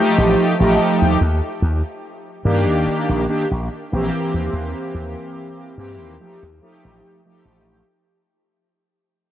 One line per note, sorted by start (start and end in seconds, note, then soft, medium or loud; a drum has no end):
0.00 0.54 F3 medium
0.00 0.54 A3 medium
0.00 0.54 D#4 medium
0.00 0.54 G4 loud
0.18 0.34 A1 loud
0.59 0.76 A1 medium
0.59 1.18 F3 loud
0.59 1.18 A3 medium
0.59 1.18 D#4 medium
0.59 1.18 G4 loud
1.02 1.17 D#2 medium
1.21 1.40 D#2 loud
1.62 1.81 D#2 loud
2.45 2.68 G2 loud
2.45 3.24 D#3 loud
2.45 3.24 A#3 medium
2.45 3.24 D4 medium
2.45 3.24 G4 loud
2.68 2.84 D#2 medium
2.87 muted slap bass stroke soft
3.09 3.25 A#1 medium
3.28 3.44 D#3 medium
3.28 3.45 A#3 medium
3.28 3.45 D4 medium
3.28 3.45 G4 medium
3.51 3.67 A#1 loud
3.92 4.09 A#1 medium
3.92 5.73 E3 medium
3.92 5.74 A#3 medium
3.92 5.74 C4 medium
3.92 5.75 G4 medium
4.34 4.50 D#2 medium
4.53 4.72 D#2 loud
4.94 5.14 D#2 loud
5.78 6.01 G2 loud
5.78 6.15 E3 loud
5.78 6.16 A#3 medium
5.78 6.16 C4 medium
5.78 6.16 G4 loud
6.01 6.17 D#2 medium
6.19 6.45 F3 medium
6.19 6.46 A3 medium
6.19 6.46 D#4 medium
6.19 6.46 G4 loud
6.43 6.59 D#2 medium
6.61 7.21 F3 loud
6.61 7.21 A3 medium
6.61 7.21 D#4 medium
6.61 7.21 G4 loud
6.85 7.00 A1 loud
7.25 7.84 F3 loud
7.25 7.84 A3 medium
7.25 7.85 D#4 medium
7.25 7.85 G4 loud
7.45 7.81 A1 medium